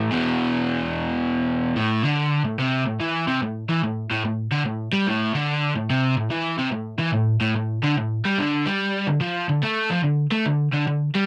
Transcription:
Already playing: A2 E3 A3
0.11 E2 B2 E3
1.76 A2
2.04 D3
2.45 A2
2.59 C3
2.87 A2
3.00 E3
3.28 C3
3.43 A2
3.69 E3
3.84 A2
4.11 A2
4.25 A2
4.52 D3
4.66 A2
4.93 G3
5.07 A2
5.34 D3
5.76 A2
5.90 C3
6.17 A2
6.31 E3
6.58 C3
6.72 A2
6.99 E3
7.14 A2
7.41 A2
7.56 A2
7.83 D3
7.97 A2
8.25 G3
8.39 D3
8.66 G3
9.07 D3
9.21 F3
9.50 D3
9.64 A3
9.91 F3
10.04 D3
10.32 A3
10.46 D3
10.73 D3
10.87 D3
11.15 G3

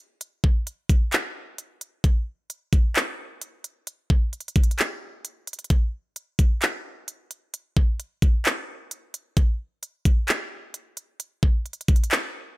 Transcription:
0.21 closed hi-hat
0.44 kick
0.67 closed hi-hat
0.89 kick, closed hi-hat
1.12 clap, closed hi-hat
1.58 closed hi-hat
1.81 closed hi-hat
2.04 kick, closed hi-hat
2.50 closed hi-hat
2.73 kick, closed hi-hat
2.95 clap, closed hi-hat
3.41 closed hi-hat
3.64 closed hi-hat
3.87 closed hi-hat
4.10 kick
4.33 closed hi-hat
4.40 closed hi-hat
4.48 closed hi-hat
4.56 kick, closed hi-hat
4.63 closed hi-hat
4.71 closed hi-hat
4.79 clap, closed hi-hat
5.25 closed hi-hat
5.47 closed hi-hat
5.53 closed hi-hat
5.59 closed hi-hat
5.64 closed hi-hat
5.70 kick, closed hi-hat
6.16 closed hi-hat
6.39 kick, closed hi-hat
6.62 clap, closed hi-hat
7.08 closed hi-hat
7.31 closed hi-hat
7.54 closed hi-hat
7.77 kick
8.00 closed hi-hat
8.22 kick, closed hi-hat
8.45 clap, closed hi-hat
8.91 closed hi-hat
9.14 closed hi-hat
9.37 kick, closed hi-hat
9.83 closed hi-hat
10.05 kick, closed hi-hat
10.28 clap, closed hi-hat
10.74 closed hi-hat
10.97 closed hi-hat
11.20 closed hi-hat
11.43 kick
11.66 closed hi-hat
11.73 closed hi-hat
11.81 closed hi-hat
11.88 kick, closed hi-hat
11.96 closed hi-hat
12.04 closed hi-hat
12.11 clap, closed hi-hat

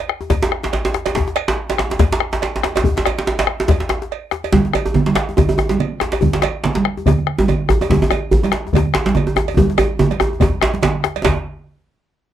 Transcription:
0.00 cowbell
0.09 bombo rim, djembe slap
0.21 djembe tone
0.30 bombo low, cowbell, djembe slap, djembe bass
0.43 bombo rim, djembe slap
0.52 bombo rim
0.63 djembe slap
0.73 cowbell, djembe slap
0.85 djembe slap
0.94 bombo rim, djembe slap
1.06 cowbell, djembe slap, djembe tone
1.15 bombo rim, bombo low, djembe slap, djembe bass
1.27 djembe slap
1.36 bombo rim, cowbell
1.48 djembe slap
1.58 bombo rim, djembe slap
1.70 cowbell, djembe slap
1.78 bombo rim, djembe slap
1.90 djembe slap, djembe tone
1.99 bombo low, cowbell, djembe slap, djembe bass
2.12 bombo rim, djembe slap
2.20 bombo rim
2.33 djembe slap
2.42 cowbell, djembe slap
2.56 djembe slap
2.63 bombo rim, djembe slap
2.75 cowbell, djembe slap, djembe tone
2.84 bombo low, djembe bass
2.96 bombo rim, djembe slap
3.06 bombo rim, cowbell, djembe slap
3.19 djembe slap
3.27 djembe slap
3.39 cowbell, djembe slap
3.47 bombo rim, djembe slap
3.60 djembe slap
3.68 bombo low, cowbell, djembe slap, djembe bass
3.80 bombo rim, djembe slap
3.89 bombo rim, djembe slap
4.02 djembe slap
4.11 bombo rim, cowbell
4.31 bombo rim, djembe slap
4.44 cowbell, djembe tone
4.53 bombo rim, bombo low, djembe slap, high conga, low conga, djembe bass
4.65 djembe slap, high conga
4.73 bombo rim, cowbell, djembe tone
4.86 djembe tone
4.94 bombo rim, djembe tone, high conga, low conga
5.06 djembe slap, high conga
5.15 bombo rim, djembe slap
5.29 djembe tone, high conga
5.37 bombo low, cowbell, djembe slap, djembe tone, djembe bass, low conga
5.49 bombo rim, djembe tone, high conga
5.58 bombo rim, djembe tone
5.69 djembe slap, high conga
5.71 djembe slap
5.80 cowbell, high conga, low conga
6.00 bombo rim, djembe slap
6.12 cowbell, djembe slap, djembe tone
6.21 bombo rim, bombo low, high conga, djembe bass, low conga
6.33 djembe slap, high conga
6.42 bombo rim, cowbell, djembe slap, high conga
6.63 bombo rim, djembe slap, high conga, low conga
6.75 djembe slap, high conga
6.85 bombo rim, djembe slap, high conga
6.97 djembe tone, high conga
7.06 bombo low, cowbell, djembe slap, low conga, djembe bass
7.19 bombo rim, high conga
7.27 bombo rim
7.39 djembe slap, djembe tone, high conga
7.48 cowbell, djembe tone, high conga, low conga
7.69 bombo rim, djembe slap, djembe bass
7.81 cowbell, djembe tone
7.83 djembe tone
7.90 bombo rim, bombo low, djembe slap, high conga, low conga, djembe bass
8.02 djembe slap, djembe tone, high conga
8.11 bombo rim, cowbell, djembe tone, high conga
8.31 bombo rim, high conga, djembe bass, low conga
8.43 cowbell, djembe slap, djembe tone, high conga
8.52 bombo rim, djembe slap, high conga
8.56 djembe slap
8.65 high conga, djembe tone
8.73 bombo low, cowbell, djembe slap, low conga, djembe bass
8.85 bombo rim, high conga
8.94 bombo rim, djembe slap
9.06 djembe slap, high conga
9.09 djembe slap
9.15 cowbell, djembe tone, high conga, low conga
9.27 djembe tone
9.36 bombo rim, djembe slap, djembe tone
9.48 cowbell, djembe tone
9.57 bombo low, high conga, djembe tone, low conga, djembe bass
9.70 djembe slap
9.78 bombo rim, cowbell, djembe tone
9.99 djembe tone, high conga, low conga
10.11 cowbell, djembe slap, high conga
10.19 bombo rim, high conga, djembe tone
10.33 djembe tone
10.40 bombo rim, bombo low, cowbell, djembe slap, djembe tone, low conga, djembe bass
10.54 high conga
10.62 bombo rim, djembe slap, high conga
10.74 bombo rim, djembe slap, high conga
10.83 cowbell, djembe slap, low conga
10.95 high conga
11.04 bombo rim, djembe slap
11.16 cowbell, djembe tone, high conga
11.24 bombo low, cowbell, djembe slap, djembe bass, low conga

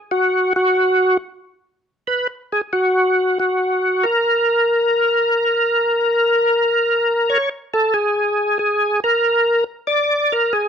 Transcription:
0.11 F#4
0.56 F#4
2.07 B4
2.52 G#4
2.73 F#4
3.40 F#4
4.03 A#4
7.30 C#5
7.74 A4
7.94 G#4
8.59 G#4
9.04 A#4
9.87 D5
10.32 A#4
10.53 G#4

